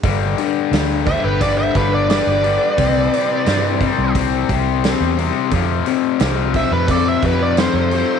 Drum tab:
HH |oooooooo|oooooooo|oooooooo|
SD |--o---o-|--o---o-|--o---o-|
BD |o--ooo--|o--ooo--|o--ooo--|